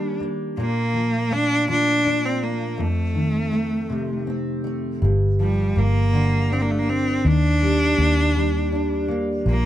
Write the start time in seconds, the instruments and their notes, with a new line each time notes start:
Already playing: steel-string acoustic guitar D#3 G3 A#3 D4, cello D4
0.20 steel-string acoustic guitar A#3
0.57 steel-string acoustic guitar A#2, cello A#3
0.93 steel-string acoustic guitar F3
1.31 steel-string acoustic guitar A3, cello D4
1.68 steel-string acoustic guitar F3, cello D4
2.05 steel-string acoustic guitar D4
2.25 cello C4
2.43 cello A#3
2.78 steel-string acoustic guitar F2, cello A3
3.15 steel-string acoustic guitar D#3
3.52 steel-string acoustic guitar A3
3.90 steel-string acoustic guitar C3
4.27 steel-string acoustic guitar C4
4.64 steel-string acoustic guitar A3
5.02 fingered electric bass G1, steel-string acoustic guitar G2
5.40 steel-string acoustic guitar F3, cello G3
5.76 fingered electric bass G1, steel-string acoustic guitar A#3, cello A#3
6.13 steel-string acoustic guitar D3
6.50 cello C4, steel-string acoustic guitar D4
6.62 cello A#3
6.71 cello A3
6.79 cello A#3
6.87 steel-string acoustic guitar A#3, cello C4
7.25 fingered electric bass D#2, steel-string acoustic guitar D#3, cello D4
7.61 steel-string acoustic guitar G3
7.97 fingered electric bass D#2, steel-string acoustic guitar A#3
8.35 steel-string acoustic guitar G3
8.72 steel-string acoustic guitar D4
9.08 steel-string acoustic guitar A#3
9.46 fingered electric bass A#1, steel-string acoustic guitar A#2
9.50 cello A#3